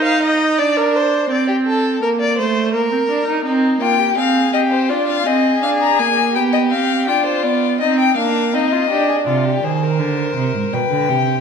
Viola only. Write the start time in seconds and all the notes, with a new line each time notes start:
Already playing: D#4
0.59 D4
1.31 C4
2.03 A#3
2.39 A3
2.74 A#3
2.92 C4
3.09 D4
3.28 D#4
3.45 C4
3.81 A#3
4.18 C4
4.54 C4
4.90 D4
5.27 C4
5.63 D4
6.00 A#3
6.35 B3
6.71 C4
7.07 D4
7.44 B3
7.81 C4
8.18 A#3
8.54 C4
8.90 D4